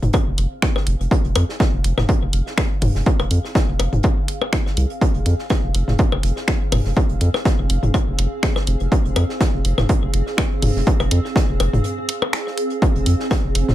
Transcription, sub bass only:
0.02 0.10 F1 medium
0.27 0.34 F1 medium
0.38 0.46 F1 medium
0.87 0.95 F1 medium
1.00 1.07 F1 medium
1.24 1.32 F1 medium
1.36 1.44 F2 loud
1.73 1.80 F1 medium
1.84 1.93 F1 medium
1.98 2.05 F1 medium
2.22 2.29 F1 medium
2.33 2.42 F1 medium
2.82 2.90 F1 medium
2.95 3.02 F1 medium
3.19 3.27 F1 loud
3.31 3.39 F2 loud
3.68 3.75 F1 medium
3.80 3.88 F1 medium
3.93 4.00 F1 medium
4.77 4.86 C2 loud
5.15 5.22 F1 loud
5.26 5.34 F2 loud
5.63 5.71 F1 medium
5.75 5.83 F1 loud
5.88 5.95 F1 medium
6.12 6.19 F1 medium
6.23 6.32 F1 medium
6.72 6.81 F1 medium
6.85 6.93 F1 medium
7.10 7.17 F1 medium
7.21 7.29 F2 loud
7.59 7.66 F1 medium
7.70 7.78 F1 medium
7.83 7.90 F1 medium
8.07 8.15 F1 medium
8.19 8.27 F1 medium
8.67 8.76 F1 medium
8.80 8.88 F1 medium
9.05 9.12 F1 medium
9.16 9.25 F2 loud
9.54 9.61 F1 medium
9.65 9.73 F1 medium
9.78 9.85 F1 medium
10.03 10.10 F1 medium
10.14 10.22 F1 medium
10.63 10.71 F1 medium
10.76 10.83 F1 medium
11.00 11.07 F1 medium
11.11 11.20 F2 loud
11.49 11.56 F1 medium
11.60 11.68 F1 loud
11.73 11.80 F1 medium
12.95 13.02 F1 medium
13.06 13.15 F2 loud
13.44 13.51 F1 medium
13.55 13.64 F1 medium
13.68 13.75 F1 medium

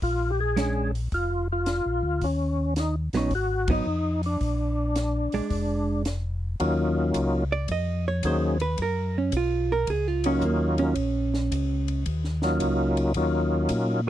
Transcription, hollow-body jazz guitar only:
0.56 0.90 G#3 medium
0.56 0.91 C#4 medium
0.56 0.91 D4 medium
3.14 3.30 F#3 medium
3.14 3.30 B3 medium
3.14 3.31 D#4 medium
3.70 3.85 F#3 medium
3.70 3.85 B3 medium
3.70 3.86 D#4 medium
5.34 6.02 G#3 medium
5.34 6.02 D4 medium
7.52 7.69 D5 medium
7.72 8.06 D#5 loud
8.08 8.24 C#5 medium
8.27 8.61 C5 medium
8.62 8.78 B4 medium
8.82 9.16 A#4 medium
9.18 9.34 C#4 soft
9.37 9.71 F4 medium
9.72 9.88 A#4 medium
9.90 10.08 G#4 medium
10.08 10.25 F4 medium
10.26 10.43 C#4 medium
10.45 10.80 A#3 medium
10.79 12.03 C#4 medium

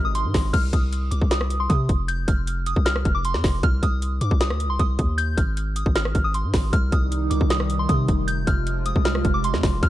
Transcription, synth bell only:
0.05 0.14 D#6 medium
0.15 0.51 C6 medium
0.53 0.72 F6 loud
0.73 1.09 D#6 medium
1.11 1.29 D6 medium
1.31 1.58 D#6 medium
1.60 1.69 C6 medium
1.69 2.06 D#6 medium
2.08 2.26 G6 loud
2.28 2.64 F6 medium
2.67 2.85 D#6 medium
2.85 3.13 F6 medium
3.15 3.24 D6 medium
3.25 3.61 C6 medium
3.64 3.82 F6 loud
3.83 4.19 D#6 medium
4.21 4.39 D6 medium
4.41 4.68 D#6 medium
4.70 4.79 C6 medium
4.80 5.16 D#6 medium
5.18 5.36 G6 loud
5.37 5.74 F6 medium
5.76 5.94 D#6 medium
5.96 6.23 F6 medium
6.24 6.33 D#6 medium
6.35 6.71 C6 medium
6.73 6.91 F6 loud
6.93 7.29 D#6 medium
7.30 7.49 D6 medium
7.50 7.78 D#6 medium
7.79 7.88 C6 medium
7.89 8.25 D#6 medium
8.28 8.46 G6 loud
8.47 8.84 F6 medium
8.86 9.04 D#6 medium
9.05 9.32 F6 medium
9.34 9.43 D6 medium
9.44 9.81 C6 medium
9.83 9.89 F6 loud

